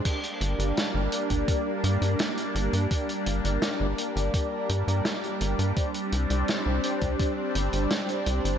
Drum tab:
CC |x---------------|----------------|----------------|
HH |xxxxx-xxx-xxxxxx|xxxxx-xxx-xxxxxx|xxxxx-xxx-xxxxxx|
SD |----o-------o---|----o-------o---|----o-------o---|
BD |o------oo-------|o-------o-------|o------oo-------|